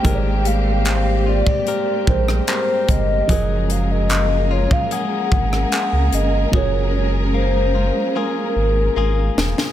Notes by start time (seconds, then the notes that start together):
Already playing: A#3 C4 G4 G5
0.02 G#1 G#2 G3 G#3 A#4, kick, closed hi-hat
0.07 C5
0.14 D5
0.45 F5, closed hi-hat
0.85 C4, clap, closed hi-hat
1.26 F4 D5
1.47 G4, kick
1.67 C4 G4 A#4, closed hi-hat
2.07 A#1 G3 G#3 A#4 C5, kick
2.28 cross-stick
2.48 C4 G4 A#4 C5, clap, closed hi-hat
2.88 G1 D#5, kick, closed hi-hat
3.27 F#1 F3 F#3 G#3 C#4 G#4 A#4, kick, closed hi-hat
3.32 A#4
3.70 F5, closed hi-hat
3.91 D#5
4.10 A#3, clap, closed hi-hat
4.51 F4 C#5
4.71 F5, kick
4.91 A#3 G#4 F#5, closed hi-hat
5.32 G#1, kick
5.53 cross-stick
5.72 A#3 G#4, clap, closed hi-hat
5.93 C#2
6.12 G1 D#5, closed hi-hat
6.51 F#1 F#3 F4 G#4, kick
6.55 A#4 C#5
6.96 C#5
7.34 A#3 C5
7.75 F4
8.15 A#3 F4 G#4 A#4
8.56 G#1
8.96 G#1 A#3 F4 G#4
9.37 E1, snare
9.58 snare